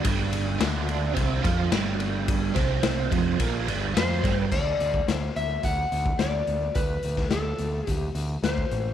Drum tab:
CC |----------------|----------------|x---------------|----------------|
RD |x-x-x-x-x-x-x-x-|x-x-x-x-x-x-x-x-|----------------|----------------|
HH |----------------|----------------|--x-x-x-x-x-x-x-|x-x-x-x-x-x-x-x-|
SD |----o-----o-o---|--o-o-------o-o-|----o-------o---|---oo-------o---|
BD |o-------o-o-----|o-o---o-o-----o-|o--o----o--o----|o--o----o----o--|